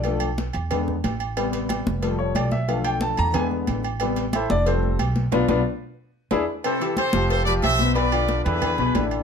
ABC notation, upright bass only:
X:1
M:4/4
L:1/8
Q:1/4=182
K:Am
V:1 name="Upright bass" clef=bass
B,,,3 E,,3 A,,,2- | A,,,3 F,,,3 B,,,2- | B,,,3 E,,3 A,,,2- | A,,,3 F,,,3 B,,,2 |
B,,, B,,, z4 E,, z | z3 F,,,3 B,,,2- | B,,,3 E,,2 B,,, A,,,2 |]